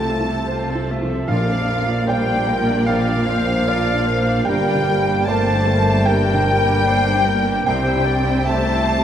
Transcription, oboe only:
0.00 0.89 A5 medium
1.27 2.04 F5 medium
2.07 2.89 G5 loud
2.87 4.49 F5 loud
4.48 5.28 G5 loud
5.26 6.08 A5 loud
6.07 7.66 G5 loud
7.66 8.19 G5 medium
8.47 9.04 A5 loud

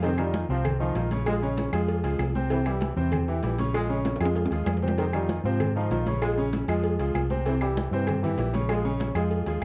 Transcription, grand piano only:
0.04 0.16 C3 medium
0.04 0.16 C4 medium
0.04 0.16 C5 medium
0.19 0.44 D#3 medium
0.19 0.44 D#4 medium
0.19 0.44 F4 medium
0.50 0.75 C3 medium
0.50 0.75 C4 medium
0.50 0.75 C5 medium
0.80 0.93 D#3 medium
0.80 0.93 D#4 medium
0.80 0.93 F4 medium
0.96 1.09 D#3 medium
0.96 1.09 D#4 medium
0.96 1.09 F4 medium
1.12 1.24 C#3 medium
1.12 1.24 C#4 medium
1.12 1.24 C#5 medium
1.27 1.40 F3 medium
1.27 1.40 F4 medium
1.27 1.40 G#4 medium
1.42 1.68 C#3 medium
1.42 1.68 C#4 medium
1.42 1.68 C#5 medium
1.73 1.98 F3 medium
1.73 1.99 F4 medium
1.73 1.99 G#4 medium
2.04 2.29 F3 medium
2.04 2.30 F4 medium
2.04 2.30 G#4 medium
2.35 2.48 C3 medium
2.35 2.48 C4 medium
2.35 2.48 C5 medium
2.51 2.63 C3 medium
2.51 2.64 C4 medium
2.51 2.64 C5 medium
2.66 2.91 E3 medium
2.66 2.91 E4 medium
2.66 2.92 G4 medium
2.96 3.22 C3 medium
2.96 3.22 C4 medium
2.96 3.22 C5 medium
3.28 3.40 E3 medium
3.28 3.41 E4 medium
3.28 3.41 G4 medium
3.43 3.56 E3 medium
3.43 3.56 E4 medium
3.43 3.56 G4 medium
3.59 3.71 C#3 medium
3.59 3.72 C#4 medium
3.59 3.72 C#5 medium
3.74 3.87 F3 medium
3.74 3.87 F4 medium
3.74 3.87 G#4 medium
3.89 4.15 C#3 medium
3.89 4.15 C#4 medium
3.89 4.15 C#5 medium
4.20 4.46 F3 medium
4.20 4.46 F4 medium
4.20 4.46 G#4 medium
4.52 4.77 F3 medium
4.52 4.77 F4 medium
4.52 4.78 G#4 medium
4.82 4.95 C3 medium
4.82 4.95 C4 medium
4.82 4.96 C5 medium
4.98 5.11 C3 medium
4.98 5.11 C4 medium
4.98 5.11 C5 medium
5.14 5.39 D#3 medium
5.14 5.39 D#4 medium
5.14 5.39 F4 medium
5.45 5.70 C3 medium
5.45 5.70 C4 medium
5.45 5.70 C5 medium
5.76 5.88 D#3 medium
5.76 5.89 D#4 medium
5.76 5.89 F4 medium
5.91 6.04 D#3 medium
5.91 6.04 D#4 medium
5.91 6.04 F4 medium
6.07 6.19 C#3 medium
6.07 6.19 C#4 medium
6.07 6.19 C#5 medium
6.22 6.34 F3 medium
6.22 6.34 F4 medium
6.22 6.35 G#4 medium
6.37 6.63 C#3 medium
6.37 6.63 C#4 medium
6.37 6.63 C#5 medium
6.69 6.94 F3 medium
6.69 6.94 F4 medium
6.69 6.94 G#4 medium
7.00 7.25 F3 medium
7.00 7.25 F4 medium
7.00 7.25 G#4 medium
7.30 7.43 C3 medium
7.30 7.43 C4 medium
7.30 7.43 C5 medium
7.46 7.58 C3 medium
7.46 7.58 C4 medium
7.46 7.59 C5 medium
7.62 7.87 E3 medium
7.62 7.87 E4 medium
7.62 7.87 G4 medium
7.93 8.18 C3 medium
7.93 8.18 C4 medium
7.93 8.18 C5 medium
8.23 8.36 E3 medium
8.23 8.36 E4 medium
8.23 8.36 G4 medium
8.38 8.51 E3 medium
8.38 8.51 E4 medium
8.38 8.51 G4 medium
8.53 8.66 C#3 medium
8.53 8.66 C#4 medium
8.53 8.67 C#5 medium
8.69 8.82 F3 medium
8.69 8.82 F4 medium
8.69 8.82 G#4 medium
8.85 9.10 C#3 medium
8.85 9.10 C#4 medium
8.85 9.10 C#5 medium
9.16 9.41 F3 medium
9.16 9.41 F4 medium
9.16 9.42 G#4 medium
9.47 9.64 F3 medium
9.47 9.64 F4 medium
9.47 9.64 G#4 medium

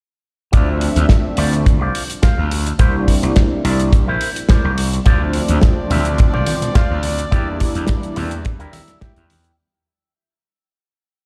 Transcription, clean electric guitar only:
0.52 0.68 F4 loud
0.52 0.68 C5 medium
0.52 0.68 D5 loud
0.80 muted clean electric guitar stroke soft
1.24 muted clean electric guitar stroke soft
1.37 1.53 F4 medium
1.37 1.53 C5 medium
1.37 1.53 D5 medium
1.66 muted clean electric guitar stroke soft
1.81 2.02 F4 loud
1.81 2.02 C5 medium
1.81 2.02 D5 loud
2.22 2.44 F4 medium
2.22 2.45 C5 medium
2.22 2.45 F5 medium
2.66 muted clean electric guitar stroke soft
2.79 2.94 E4 medium
2.79 2.94 A#4 medium
2.79 2.95 C5 loud
3.08 muted clean electric guitar stroke soft
3.50 muted clean electric guitar stroke soft
3.64 3.79 E4 medium
3.64 3.80 A#4 medium
3.64 3.80 D5 medium
3.92 muted clean electric guitar stroke soft
4.08 4.29 E4 loud
4.08 4.29 A#4 medium
4.08 4.29 C5 loud
4.49 4.71 E4 medium
4.49 4.71 A#4 medium
4.49 4.71 C5 medium
4.49 4.92 D5 medium
4.93 muted clean electric guitar stroke soft
5.05 5.21 F4 loud
5.05 5.21 C5 loud
5.05 5.21 D5 loud
5.34 muted clean electric guitar stroke soft
5.78 muted clean electric guitar stroke soft
5.90 6.06 F4 medium
5.90 6.06 C5 medium
5.90 6.06 E5 medium
6.18 muted clean electric guitar stroke soft
6.33 6.54 F4 loud
6.33 6.55 C5 loud
6.33 6.55 D5 medium
6.74 6.97 F4 medium
6.74 6.97 C5 medium
6.74 6.97 F5 medium
7.18 muted clean electric guitar stroke soft
7.31 7.47 E4 loud
7.31 7.47 G4 medium
7.31 7.47 D5 loud
7.60 muted clean electric guitar stroke soft
8.03 muted clean electric guitar stroke soft
8.16 8.32 E4 medium
8.16 8.32 G4 medium
8.16 8.32 A4 medium
8.44 muted clean electric guitar stroke soft
8.59 8.73 E4 loud
8.59 8.81 G4 medium
8.59 8.81 A#4 loud
8.73 9.00 E5 medium
9.01 9.23 E4 medium
9.01 9.23 G4 medium
9.01 9.24 E5 loud
9.01 9.54 G5 medium
9.44 muted clean electric guitar stroke soft

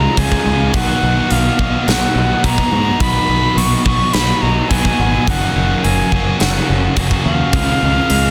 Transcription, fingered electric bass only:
0.17 0.34 C#2 medium
0.46 0.74 C#2 medium
0.74 0.91 B1 loud
1.03 1.20 B1 medium
1.31 1.48 B1 medium
1.59 1.76 B1 medium
1.88 2.05 B1 medium
2.15 2.33 B1 medium
2.44 2.61 B1 medium
2.72 2.89 G#2 medium
3.00 3.18 B1 medium
3.29 3.46 B1 medium
3.57 3.74 B1 medium
3.85 4.03 B1 medium
4.14 4.31 B1 medium
4.42 4.59 B1 medium
4.71 4.88 B1 medium
4.99 5.16 G#1 medium
5.27 5.44 F#1 loud
5.56 5.73 F#1 medium
5.84 6.01 F#1 medium
6.12 6.29 F#1 medium
6.41 6.58 F#1 medium
6.70 6.86 F#1 medium
6.97 7.14 F#1 medium
7.25 7.42 D#2 medium
7.53 7.70 C#2 loud
7.82 7.99 C#2 medium
8.10 8.27 C#2 medium

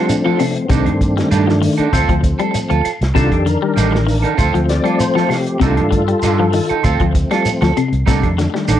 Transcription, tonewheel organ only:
0.00 0.66 F3 soft
0.00 0.66 A3 soft
0.00 0.53 C4 medium
0.09 0.24 D4 medium
0.25 0.39 F4 medium
0.39 0.54 D4 medium
0.54 0.69 C4 medium
0.65 1.88 D#3 medium
0.65 0.69 B3 medium
0.69 1.89 A3 soft
0.69 1.30 C4 loud
0.69 1.89 D4 medium
1.93 2.81 F3 medium
1.93 2.81 A3 medium
1.93 2.81 C4 medium
3.14 4.34 D#3 medium
3.14 4.35 D4 medium
3.14 3.31 F4 loud
3.14 3.41 A4 medium
3.33 3.47 G4 medium
3.42 3.46 A4 medium
3.47 4.36 A#4 loud
4.39 5.58 F3 medium
4.39 5.58 A3 soft
4.39 5.58 C4 medium
4.69 4.99 D5 medium
5.01 5.30 C5 medium
5.32 5.62 G4 medium
5.61 6.03 D#3 medium
5.61 6.03 A3 soft
5.61 6.04 D4 medium
5.61 6.81 F4 medium
5.61 6.81 A4 loud
6.83 7.72 F3 medium
6.83 7.72 A3 soft
6.83 7.72 C4 medium
8.07 8.80 D#3 medium
8.07 8.80 A3 medium
8.07 8.64 D4 medium
8.65 8.69 D4 medium
8.69 8.80 D#4 loud

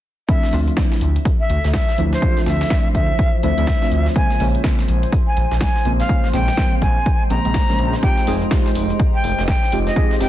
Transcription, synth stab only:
0.28 0.50 F3 medium
0.28 0.50 A3 medium
0.28 0.51 C4 medium
0.28 0.51 D4 medium
0.28 0.51 E4 loud
0.52 0.73 F3 medium
0.52 0.73 A3 medium
0.52 0.73 C4 medium
0.52 0.73 D4 medium
0.52 0.73 F4 loud
0.76 1.95 F3 medium
0.76 1.96 A3 medium
0.76 1.96 C4 medium
0.76 1.96 D4 medium
0.76 1.96 E4 medium
1.98 2.20 F3 medium
1.98 2.20 A3 medium
1.98 2.20 C4 medium
1.98 2.20 D4 medium
1.98 2.20 E4 medium
2.22 2.44 F3 medium
2.22 2.44 A3 medium
2.22 2.44 C4 medium
2.22 2.44 D4 medium
2.22 2.44 F4 loud
2.46 2.61 F3 medium
2.46 2.61 A3 medium
2.46 2.61 C4 medium
2.46 2.61 D4 medium
2.46 2.61 E4 medium
2.70 3.41 F3 medium
2.70 3.41 A3 medium
2.70 3.41 C4 medium
2.70 3.41 D4 medium
2.70 3.41 E4 loud
3.43 3.55 F3 medium
3.43 3.56 A3 medium
3.43 3.56 C4 medium
3.43 3.56 D4 medium
3.43 3.56 E4 loud
3.58 3.78 F3 medium
3.58 3.78 A3 medium
3.58 3.79 C4 medium
3.58 3.79 D4 medium
3.58 3.79 E4 loud
3.82 4.13 F3 medium
3.82 4.13 A3 medium
3.82 4.13 C4 medium
3.82 4.14 D4 medium
3.82 4.14 F4 medium
4.15 4.37 C#3 medium
4.15 4.38 F3 medium
4.15 4.38 G#3 medium
4.15 4.38 A#3 medium
4.15 4.38 C4 loud
4.40 4.60 C#3 medium
4.40 4.60 F3 medium
4.40 4.60 G#3 medium
4.40 4.60 A#3 medium
4.40 4.60 C#4 loud
4.63 5.82 C#3 medium
4.63 5.83 F3 medium
4.63 5.83 A#3 medium
4.63 5.83 C4 medium
5.85 6.07 C#3 medium
5.85 6.07 F3 medium
5.85 6.07 G#3 medium
5.85 6.07 A#3 medium
5.85 6.07 C4 medium
6.09 6.31 C#3 loud
6.09 6.31 F3 medium
6.09 6.31 G#3 medium
6.09 6.31 A#3 medium
6.09 6.31 C#4 loud
6.33 6.48 C#3 medium
6.33 6.48 F3 medium
6.33 6.48 G#3 medium
6.33 6.48 A#3 medium
6.33 6.48 C4 medium
6.57 7.28 C#3 medium
6.57 7.28 F3 medium
6.57 7.28 G#3 medium
6.57 7.28 A#3 medium
6.57 7.28 C4 loud
7.30 7.43 C#3 medium
7.30 7.43 F3 medium
7.30 7.43 G#3 medium
7.30 7.43 A#3 medium
7.30 7.43 C4 loud
7.45 7.65 C#3 medium
7.45 7.66 F3 medium
7.45 7.66 G#3 medium
7.45 7.66 A#3 medium
7.45 7.66 C4 loud
7.69 8.00 C#3 medium
7.69 8.01 F3 medium
7.69 8.01 G#3 medium
7.69 8.01 A#3 medium
7.69 8.01 C#4 medium
8.03 8.25 G#3 medium
8.03 8.25 C4 medium
8.03 8.25 D#4 medium
8.03 8.25 F4 medium
8.03 8.25 G4 loud
8.27 8.47 G#3 medium
8.27 8.47 C4 medium
8.27 8.47 D#4 medium
8.27 8.47 F4 medium
8.27 8.47 G#4 loud
8.50 9.70 G#3 medium
8.50 9.70 C4 medium
8.50 9.70 D#4 medium
8.50 9.70 F4 medium
8.50 9.70 G4 medium
9.72 9.94 G#3 medium
9.72 9.94 C4 medium
9.72 9.94 D#4 medium
9.72 9.94 F4 medium
9.72 9.94 G4 medium
9.96 10.18 G#3 medium
9.96 10.18 C4 medium
9.96 10.18 D#4 medium
9.96 10.18 F4 medium
9.96 10.19 G#4 loud
10.20 10.29 G#3 medium
10.20 10.29 C4 medium
10.20 10.29 D#4 medium
10.20 10.29 F4 medium
10.20 10.29 G4 medium

